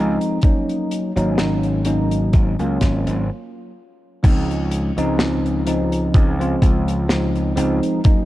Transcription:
Already playing: slap bass C#2, tine electric piano F3 G#3 C4 D#4
0.21 closed hi-hat
0.42 tine electric piano F#3 A#3 C#4 D#4, kick, closed hi-hat
0.69 closed hi-hat
0.91 closed hi-hat
1.16 slap bass G#1, tine electric piano F#3 A#3 C#4 D#4, closed hi-hat
1.38 snare, closed hi-hat
1.63 closed hi-hat
1.85 tine electric piano F#3 A#3 C#4 D#4, closed hi-hat
2.11 closed hi-hat
2.33 slap bass G#1, kick, closed hi-hat
2.59 slap bass C#2, tine electric piano F#3 A#3 C#4 F4, closed hi-hat
2.81 slap bass G#1, kick, snare, closed hi-hat
3.07 slap bass G#1, closed hi-hat
4.23 slap bass C#2, tine electric piano F3 G#3 C4 D#4, kick, closed hi-hat, crash
4.51 closed hi-hat
4.71 closed hi-hat
4.97 slap bass C#2, tine electric piano F3 G#3 C4 D#4, closed hi-hat
5.19 snare, closed hi-hat
5.46 closed hi-hat
5.66 tine electric piano F3 G#3 C4 D#4, closed hi-hat
5.92 closed hi-hat
6.14 slap bass C#2, kick, closed hi-hat
6.39 tine electric piano F3 G#3 C4 F4, closed hi-hat
6.62 slap bass C#2, kick, closed hi-hat
6.88 closed hi-hat
7.08 tine electric piano F3 G#3 C4 D#4, snare, closed hi-hat
7.35 closed hi-hat
7.56 slap bass C#2, tine electric piano F3 G#3 C4 D#4, closed hi-hat
7.83 closed hi-hat
8.04 tine electric piano F#3 A#3 C#4 D#4, kick, closed hi-hat

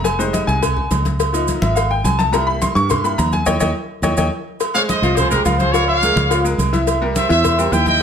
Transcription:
Already playing: fingered electric bass F1
0.04 upright piano G#5, cowbell, high conga, low agogo, maracas
0.19 upright piano G3 G#3 D#4 C5, high conga, maracas
0.33 upright piano D#5, cowbell, high conga, low agogo, maracas
0.47 fingered electric bass C2, upright piano G#5, cowbell, high conga, maracas
0.62 cowbell, high conga, low conga, low agogo, maracas
0.77 high conga, low conga, low agogo
0.91 fingered electric bass C#2, cowbell, high conga, low timbale, low agogo, maracas
1.05 cowbell, high conga, maracas
1.19 cowbell, high conga, low agogo, maracas
1.33 upright piano F3 A#3 D#4, high conga, low agogo, maracas
1.48 cowbell, high conga, maracas
1.62 fingered electric bass G#1, upright piano E5, cowbell, high conga, low agogo, maracas
1.75 upright piano F5, cowbell, high conga, low agogo, maracas
1.90 upright piano G5, high conga
2.04 fingered electric bass C2, upright piano G#5, cowbell, high conga, low agogo, maracas
2.19 upright piano A5, cowbell, high conga, low agogo, maracas
2.32 upright piano G3 A#3 E4 A#5, cowbell, high conga, low agogo, maracas
2.47 upright piano B5, high conga
2.62 upright piano C6, cowbell, high conga, low agogo, maracas
2.75 fingered electric bass G2, upright piano C#6, cowbell, high conga, maracas
2.90 upright piano C6, cowbell, high conga, low conga, low agogo, maracas
3.04 upright piano G3 A#3 E4 B5, high conga, low agogo, maracas
3.18 fingered electric bass D#2, upright piano A#5, cowbell, high conga, low timbale, low agogo, maracas
3.32 upright piano G#5, cowbell, high conga, maracas
3.46 fingered electric bass D#2, upright piano C#5 D#5 G5, cowbell, high conga, high timbale, maracas
3.60 fingered electric bass D#2, upright piano C#5 D#5 G5, cowbell, high conga, high timbale, maracas
4.02 fingered electric bass D#2, upright piano C#5 D#5 G5, cowbell, high conga, high timbale, maracas
4.17 fingered electric bass D#2, upright piano C#5 D#5 G5, cowbell, high conga, high timbale, maracas
4.60 cowbell, high conga, low agogo, maracas
4.74 upright piano G#3 G#4 C5, trumpet section C#5 F5, high conga, maracas
4.88 trumpet section C5 D#5, cowbell, high conga, low agogo, maracas
5.02 fingered electric bass C2, upright piano F3 F4 F5, cowbell, maracas
5.16 trumpet section G#4 C5, cowbell, high conga, low conga, low agogo, maracas
5.30 upright piano G#3 G#4 C5, trumpet section G4 A#4, high conga, low conga, low agogo, maracas
5.43 fingered electric bass C#2, upright piano F3 F4 F5, trumpet section F4 A#4, cowbell, high conga, low agogo, maracas
5.58 trumpet section G#4 C5, cowbell, high conga, maracas
5.72 upright piano F3 F4 F5, trumpet section A#4 C#5, cowbell, high conga, low agogo, maracas
5.87 trumpet section C#5 F5, high conga, low agogo
6.02 upright piano G#3 G#4 A#4, cowbell, high conga, maracas
6.16 fingered electric bass C#2, cowbell, high conga, low agogo, maracas
6.30 upright piano F3 F4 F5, cowbell, high conga, low agogo, maracas
6.44 upright piano G#3 G#4 A#4, high conga, maracas
6.58 fingered electric bass C2, cowbell, high conga, low agogo, maracas
6.73 upright piano E3 E4 E5, cowbell, high conga, low agogo, maracas
6.87 cowbell, high conga, low agogo, maracas
7.02 upright piano G3 G4 A#4, high conga
7.16 trumpet section C5 E5, cowbell, high conga, low agogo, maracas
7.29 fingered electric bass E2, upright piano E3 E4 E5, trumpet section C5 E5, cowbell, high conga, maracas
7.44 cowbell, high conga, low conga, low agogo, maracas
7.58 upright piano G3 G4 A#4, high conga, low agogo, maracas
7.72 fingered electric bass D#2, upright piano E3 E4 E5, trumpet section E5 G5, cowbell, high conga, low agogo, maracas
7.86 trumpet section D#5 G5, cowbell, high conga, maracas

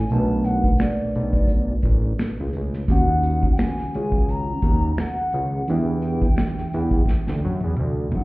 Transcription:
Already playing: tine electric piano C#5, soft synth lead G#5
0.10 analog synth bass B1, tine electric piano B2 A3 D4 A#4, soft synth lead A5, closed hi-hat
0.20 tine electric piano B4
0.44 soft synth lead F#5, closed hi-hat
0.64 kick
0.78 soft synth lead D5, finger snap, snare, closed hi-hat
1.01 analog synth bass B1
1.15 analog synth bass B1, closed hi-hat
1.33 kick
1.48 kick, closed hi-hat
1.82 analog synth bass A1, kick, closed hi-hat
2.19 finger snap, snare, closed hi-hat
2.40 analog synth bass C#2
2.53 analog synth bass C#2, closed hi-hat
2.73 snare
2.88 analog synth bass D#2, tine electric piano D#3 C#4 F#4 F#5, soft synth lead F#5, kick, closed hi-hat
3.23 closed hi-hat
3.43 kick
3.53 soft synth lead G5
3.58 soft synth lead G#5, finger snap, snare, closed hi-hat
3.78 analog synth bass C#2, snare
3.94 analog synth bass C#2, closed hi-hat
4.12 kick
4.29 soft synth lead A#5, closed hi-hat
4.62 analog synth bass D#2, kick, closed hi-hat
4.97 soft synth lead F#5, finger snap, snare, closed hi-hat
5.33 analog synth bass C#2, closed hi-hat
5.68 analog synth bass E2, tine electric piano E3 D4 G4 E5, soft synth lead G5, closed hi-hat
6.02 closed hi-hat
6.22 kick
6.36 finger snap, snare, closed hi-hat
6.57 analog synth bass E2, snare
6.73 analog synth bass E2, closed hi-hat
6.91 kick
7.06 kick, snare
7.27 analog synth bass D2, snare
7.45 analog synth bass F#2
7.61 analog synth bass E2, high tom
7.77 analog synth bass D2, mid tom
8.12 analog synth bass F#1, soft synth lead F#5, floor tom

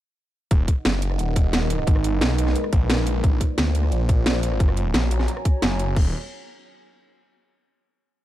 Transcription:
0.51 detuned saw bass D#1, analog synth pad D#4 A#4 D#5 F#5, kick, closed hi-hat
0.68 kick, closed hi-hat
0.85 detuned saw bass F#1, snare, closed hi-hat
1.02 closed hi-hat
1.11 cross-stick
1.19 detuned saw bass D#1, closed hi-hat
1.36 kick, closed hi-hat
1.53 detuned saw bass D#1, snare, closed hi-hat
1.70 closed hi-hat
1.79 cross-stick
1.87 detuned saw bass G#1, analog synth pad G#3 B4, kick, closed hi-hat
1.96 cross-stick
2.04 closed hi-hat
2.21 detuned saw bass B1, snare, closed hi-hat
2.38 closed hi-hat
2.47 cross-stick, snare
2.56 closed hi-hat
2.64 cross-stick
2.73 detuned saw bass A#1, kick, closed hi-hat
2.90 snare, closed hi-hat
3.07 closed hi-hat
3.24 detuned saw bass A#1, analog synth pad A#3 F4 C5 D5, kick, closed hi-hat
3.41 kick, closed hi-hat
3.58 detuned saw bass D2, snare, closed hi-hat
3.75 closed hi-hat
3.83 cross-stick
3.92 detuned saw bass A#1, closed hi-hat
4.09 kick, closed hi-hat
4.26 detuned saw bass A#1, snare, closed hi-hat
4.43 closed hi-hat
4.52 cross-stick
4.60 detuned saw bass F#1, analog synth pad F#4 C#5 G#5 A#5, kick, closed hi-hat
4.69 cross-stick
4.77 closed hi-hat
4.94 detuned saw bass A#1, snare, closed hi-hat
5.11 closed hi-hat
5.20 cross-stick, snare
5.28 closed hi-hat
5.37 cross-stick
5.45 kick, closed hi-hat
5.62 detuned saw bass F#1, snare, closed hi-hat
5.79 closed hi-hat
5.96 detuned saw bass D#1, kick, crash

